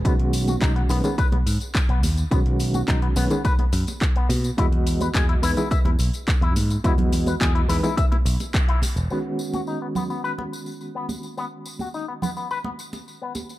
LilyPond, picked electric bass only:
\new Staff \with { instrumentName = "Picked electric bass" } { \clef bass \time 4/4 \key b \major \tempo 4 = 106 b,,16 b,,8. b,,16 r16 b,,16 r8 b,,16 gis,16 r8 b,,16 dis,16 r16 | b,,16 b,,8. b,,16 r16 b,,16 r8. fis,16 r8. b,16 r16 | e,16 e,8. e,16 r16 e,16 r8 e,16 b,,16 r8 e,16 gis,16 r16 | e,16 e,8. e,16 r16 e,16 r8. b,,16 r4 e,,16 |
r1 | r1 | }